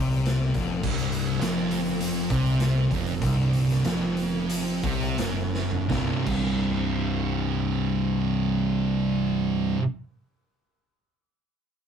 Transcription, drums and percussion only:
0, 0, Header, 1, 2, 480
1, 0, Start_track
1, 0, Tempo, 584795
1, 685, Time_signature, 4, 2, 24, 8
1, 2134, Tempo, 632911
1, 3574, Tempo, 698487
1, 4534, Tempo, 732601
1, 8450, End_track
2, 0, Start_track
2, 0, Title_t, "Drums"
2, 95, Note_on_c, 9, 42, 48
2, 177, Note_off_c, 9, 42, 0
2, 209, Note_on_c, 9, 42, 99
2, 218, Note_on_c, 9, 38, 101
2, 291, Note_off_c, 9, 42, 0
2, 300, Note_off_c, 9, 38, 0
2, 444, Note_on_c, 9, 42, 80
2, 448, Note_on_c, 9, 36, 105
2, 453, Note_on_c, 9, 38, 34
2, 526, Note_off_c, 9, 42, 0
2, 530, Note_off_c, 9, 36, 0
2, 535, Note_off_c, 9, 38, 0
2, 683, Note_on_c, 9, 49, 106
2, 686, Note_on_c, 9, 36, 116
2, 765, Note_off_c, 9, 49, 0
2, 768, Note_off_c, 9, 36, 0
2, 803, Note_on_c, 9, 42, 57
2, 885, Note_off_c, 9, 42, 0
2, 921, Note_on_c, 9, 42, 88
2, 1003, Note_off_c, 9, 42, 0
2, 1162, Note_on_c, 9, 42, 112
2, 1172, Note_on_c, 9, 38, 124
2, 1245, Note_off_c, 9, 42, 0
2, 1254, Note_off_c, 9, 38, 0
2, 1403, Note_on_c, 9, 42, 85
2, 1485, Note_off_c, 9, 42, 0
2, 1521, Note_on_c, 9, 42, 57
2, 1604, Note_off_c, 9, 42, 0
2, 1647, Note_on_c, 9, 42, 118
2, 1729, Note_off_c, 9, 42, 0
2, 1888, Note_on_c, 9, 42, 88
2, 1890, Note_on_c, 9, 36, 115
2, 1970, Note_off_c, 9, 42, 0
2, 1972, Note_off_c, 9, 36, 0
2, 2017, Note_on_c, 9, 42, 50
2, 2099, Note_off_c, 9, 42, 0
2, 2134, Note_on_c, 9, 42, 107
2, 2142, Note_on_c, 9, 38, 106
2, 2210, Note_off_c, 9, 42, 0
2, 2218, Note_off_c, 9, 38, 0
2, 2369, Note_on_c, 9, 36, 106
2, 2371, Note_on_c, 9, 42, 75
2, 2445, Note_off_c, 9, 36, 0
2, 2446, Note_off_c, 9, 42, 0
2, 2485, Note_on_c, 9, 42, 51
2, 2561, Note_off_c, 9, 42, 0
2, 2603, Note_on_c, 9, 36, 114
2, 2603, Note_on_c, 9, 42, 105
2, 2679, Note_off_c, 9, 36, 0
2, 2679, Note_off_c, 9, 42, 0
2, 2842, Note_on_c, 9, 42, 74
2, 2918, Note_off_c, 9, 42, 0
2, 2961, Note_on_c, 9, 42, 53
2, 2970, Note_on_c, 9, 38, 36
2, 3037, Note_off_c, 9, 42, 0
2, 3045, Note_off_c, 9, 38, 0
2, 3080, Note_on_c, 9, 42, 98
2, 3088, Note_on_c, 9, 38, 120
2, 3155, Note_off_c, 9, 42, 0
2, 3164, Note_off_c, 9, 38, 0
2, 3324, Note_on_c, 9, 42, 74
2, 3400, Note_off_c, 9, 42, 0
2, 3572, Note_on_c, 9, 42, 116
2, 3641, Note_off_c, 9, 42, 0
2, 3803, Note_on_c, 9, 42, 83
2, 3806, Note_on_c, 9, 36, 113
2, 3872, Note_off_c, 9, 42, 0
2, 3875, Note_off_c, 9, 36, 0
2, 3922, Note_on_c, 9, 42, 44
2, 3991, Note_off_c, 9, 42, 0
2, 4043, Note_on_c, 9, 42, 104
2, 4050, Note_on_c, 9, 38, 109
2, 4112, Note_off_c, 9, 42, 0
2, 4119, Note_off_c, 9, 38, 0
2, 4293, Note_on_c, 9, 38, 69
2, 4362, Note_off_c, 9, 38, 0
2, 4408, Note_on_c, 9, 43, 101
2, 4477, Note_off_c, 9, 43, 0
2, 4535, Note_on_c, 9, 36, 110
2, 4541, Note_on_c, 9, 38, 101
2, 4601, Note_off_c, 9, 36, 0
2, 4607, Note_off_c, 9, 38, 0
2, 4776, Note_on_c, 9, 36, 101
2, 4776, Note_on_c, 9, 57, 88
2, 4842, Note_off_c, 9, 36, 0
2, 4842, Note_off_c, 9, 57, 0
2, 8450, End_track
0, 0, End_of_file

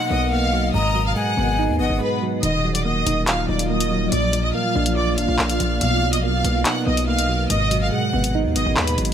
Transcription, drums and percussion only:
0, 0, Header, 1, 2, 480
1, 0, Start_track
1, 0, Tempo, 422535
1, 841, Time_signature, 4, 2, 24, 8
1, 10379, End_track
2, 0, Start_track
2, 0, Title_t, "Drums"
2, 2761, Note_on_c, 9, 42, 94
2, 2875, Note_off_c, 9, 42, 0
2, 3122, Note_on_c, 9, 42, 82
2, 3236, Note_off_c, 9, 42, 0
2, 3482, Note_on_c, 9, 42, 79
2, 3596, Note_off_c, 9, 42, 0
2, 3720, Note_on_c, 9, 42, 85
2, 3722, Note_on_c, 9, 39, 114
2, 3833, Note_off_c, 9, 42, 0
2, 3835, Note_off_c, 9, 39, 0
2, 4082, Note_on_c, 9, 42, 89
2, 4195, Note_off_c, 9, 42, 0
2, 4322, Note_on_c, 9, 42, 88
2, 4436, Note_off_c, 9, 42, 0
2, 4681, Note_on_c, 9, 42, 91
2, 4794, Note_off_c, 9, 42, 0
2, 4921, Note_on_c, 9, 42, 78
2, 5035, Note_off_c, 9, 42, 0
2, 5520, Note_on_c, 9, 42, 83
2, 5633, Note_off_c, 9, 42, 0
2, 5882, Note_on_c, 9, 42, 75
2, 5996, Note_off_c, 9, 42, 0
2, 6121, Note_on_c, 9, 39, 115
2, 6234, Note_off_c, 9, 39, 0
2, 6242, Note_on_c, 9, 42, 91
2, 6356, Note_off_c, 9, 42, 0
2, 6362, Note_on_c, 9, 42, 72
2, 6476, Note_off_c, 9, 42, 0
2, 6601, Note_on_c, 9, 42, 92
2, 6715, Note_off_c, 9, 42, 0
2, 6963, Note_on_c, 9, 42, 84
2, 7077, Note_off_c, 9, 42, 0
2, 7322, Note_on_c, 9, 42, 80
2, 7436, Note_off_c, 9, 42, 0
2, 7559, Note_on_c, 9, 42, 90
2, 7561, Note_on_c, 9, 39, 115
2, 7673, Note_off_c, 9, 42, 0
2, 7674, Note_off_c, 9, 39, 0
2, 7922, Note_on_c, 9, 42, 88
2, 8035, Note_off_c, 9, 42, 0
2, 8162, Note_on_c, 9, 42, 91
2, 8276, Note_off_c, 9, 42, 0
2, 8521, Note_on_c, 9, 42, 94
2, 8634, Note_off_c, 9, 42, 0
2, 8761, Note_on_c, 9, 42, 73
2, 8874, Note_off_c, 9, 42, 0
2, 9359, Note_on_c, 9, 42, 84
2, 9473, Note_off_c, 9, 42, 0
2, 9722, Note_on_c, 9, 42, 76
2, 9835, Note_off_c, 9, 42, 0
2, 9960, Note_on_c, 9, 39, 117
2, 10074, Note_off_c, 9, 39, 0
2, 10082, Note_on_c, 9, 42, 88
2, 10195, Note_off_c, 9, 42, 0
2, 10200, Note_on_c, 9, 42, 60
2, 10280, Note_off_c, 9, 42, 0
2, 10280, Note_on_c, 9, 42, 63
2, 10379, Note_off_c, 9, 42, 0
2, 10379, End_track
0, 0, End_of_file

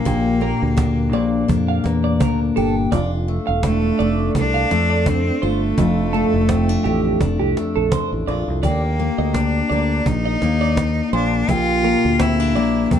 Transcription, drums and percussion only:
0, 0, Header, 1, 2, 480
1, 0, Start_track
1, 0, Key_signature, -1, "major"
1, 0, Tempo, 714286
1, 40, Time_signature, 4, 2, 24, 8
1, 8733, End_track
2, 0, Start_track
2, 0, Title_t, "Cajon"
2, 41, Note_on_c, 9, 36, 110
2, 109, Note_off_c, 9, 36, 0
2, 521, Note_on_c, 9, 38, 108
2, 522, Note_on_c, 9, 36, 103
2, 588, Note_off_c, 9, 38, 0
2, 589, Note_off_c, 9, 36, 0
2, 1003, Note_on_c, 9, 36, 124
2, 1071, Note_off_c, 9, 36, 0
2, 1247, Note_on_c, 9, 38, 94
2, 1315, Note_off_c, 9, 38, 0
2, 1482, Note_on_c, 9, 36, 112
2, 1482, Note_on_c, 9, 38, 105
2, 1549, Note_off_c, 9, 38, 0
2, 1550, Note_off_c, 9, 36, 0
2, 1963, Note_on_c, 9, 36, 118
2, 2030, Note_off_c, 9, 36, 0
2, 2440, Note_on_c, 9, 38, 115
2, 2443, Note_on_c, 9, 36, 101
2, 2507, Note_off_c, 9, 38, 0
2, 2510, Note_off_c, 9, 36, 0
2, 2923, Note_on_c, 9, 36, 127
2, 2990, Note_off_c, 9, 36, 0
2, 3165, Note_on_c, 9, 38, 94
2, 3233, Note_off_c, 9, 38, 0
2, 3401, Note_on_c, 9, 38, 107
2, 3402, Note_on_c, 9, 36, 118
2, 3469, Note_off_c, 9, 38, 0
2, 3470, Note_off_c, 9, 36, 0
2, 3882, Note_on_c, 9, 36, 120
2, 3949, Note_off_c, 9, 36, 0
2, 4360, Note_on_c, 9, 38, 111
2, 4362, Note_on_c, 9, 36, 103
2, 4427, Note_off_c, 9, 38, 0
2, 4429, Note_off_c, 9, 36, 0
2, 4842, Note_on_c, 9, 36, 127
2, 4909, Note_off_c, 9, 36, 0
2, 5087, Note_on_c, 9, 38, 92
2, 5154, Note_off_c, 9, 38, 0
2, 5321, Note_on_c, 9, 36, 117
2, 5321, Note_on_c, 9, 38, 112
2, 5388, Note_off_c, 9, 36, 0
2, 5388, Note_off_c, 9, 38, 0
2, 5801, Note_on_c, 9, 36, 119
2, 5868, Note_off_c, 9, 36, 0
2, 6279, Note_on_c, 9, 38, 98
2, 6280, Note_on_c, 9, 36, 101
2, 6347, Note_off_c, 9, 36, 0
2, 6347, Note_off_c, 9, 38, 0
2, 6761, Note_on_c, 9, 36, 122
2, 6828, Note_off_c, 9, 36, 0
2, 7001, Note_on_c, 9, 38, 94
2, 7068, Note_off_c, 9, 38, 0
2, 7239, Note_on_c, 9, 36, 127
2, 7240, Note_on_c, 9, 38, 111
2, 7306, Note_off_c, 9, 36, 0
2, 7307, Note_off_c, 9, 38, 0
2, 7718, Note_on_c, 9, 36, 114
2, 7786, Note_off_c, 9, 36, 0
2, 8195, Note_on_c, 9, 38, 113
2, 8197, Note_on_c, 9, 36, 108
2, 8263, Note_off_c, 9, 38, 0
2, 8265, Note_off_c, 9, 36, 0
2, 8677, Note_on_c, 9, 36, 127
2, 8733, Note_off_c, 9, 36, 0
2, 8733, End_track
0, 0, End_of_file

